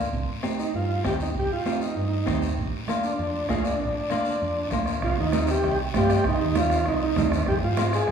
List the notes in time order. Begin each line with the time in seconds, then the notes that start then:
0.13 C2, bombo low, high conga, long guiro
0.43 C4 D#4 G4, bombo rim, high conga, short guiro
0.59 D#4, short guiro
0.74 G2 F4, high conga, long guiro
1.04 D#2 C4 D#4 G4, bombo low, bombo rim, high conga, short guiro
1.20 D#4, short guiro
1.34 C2, bombo low, high conga, long guiro
1.39 G4
1.53 F4
1.66 C4 D#4 G4, bombo rim, high conga, short guiro
1.82 D#4, short guiro
1.96 G2, high conga, long guiro
2.27 D#2 C4 D#4 G4, bombo low, bombo rim, high conga, short guiro
2.42 bombo rim, short guiro
2.57 A#1, bombo low, high conga, long guiro
2.88 A#3 D4 F4, bombo rim, high conga, short guiro
3.03 D4, short guiro
3.18 F2, high conga, long guiro
3.49 D2 A#3 D4 F4 G#4, bombo low, bombo rim, high conga, short guiro
3.64 D4, bombo rim, short guiro
3.80 A#1, bombo low, high conga, long guiro
4.10 A#3 D4 F4, bombo rim, high conga, short guiro
4.25 short guiro
4.40 F2, high conga, long guiro
4.71 D2 A#3 D4 F4, bombo low, bombo rim, high conga, short guiro
4.86 bombo rim, short guiro
5.02 C2 F4, bombo low, bombo rim, long guiro
5.17 D#2 D#4, high conga
5.32 G3 C4 D#4, bombo rim, high conga, short guiro
5.47 G4, bombo rim, short guiro
5.64 C2, bombo rim, long guiro
5.79 high conga
5.94 G2 G3 C4 F4 G4, bombo low, bombo rim, high conga, short guiro
6.10 bombo rim, short guiro
6.24 C2 D#4, bombo low, bombo rim, long guiro
6.40 D#2, high conga
6.55 G3 C4 F4, bombo rim, high conga, low conga, short guiro
6.59 F4
6.70 bombo rim, short guiro
6.86 C2 D#4, bombo rim, long guiro
7.02 D#4, high conga
7.16 D#2 G3 C4 D4, bombo low, bombo rim, high conga, low conga, short guiro
7.32 bombo rim, short guiro
7.46 F2 G4, bombo low, bombo rim, long guiro
7.63 G#2 F4, high conga
7.77 G#3 C4 F4, bombo rim, high conga, short guiro
7.93 G#4, bombo rim, short guiro
8.08 F2, bombo rim